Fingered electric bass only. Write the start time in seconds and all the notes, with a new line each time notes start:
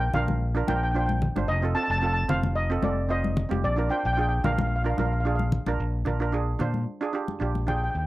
0.14 A#1
0.68 A#1
1.36 G1
1.48 F1
1.90 F1
2.29 F1
2.83 F1
3.51 F1
3.64 A#1
4.05 A#1
4.44 A#1
4.98 A#1
5.67 A#1
5.80 A#1
6.06 A#1
6.60 A#2
7.41 A#1
7.95 D#2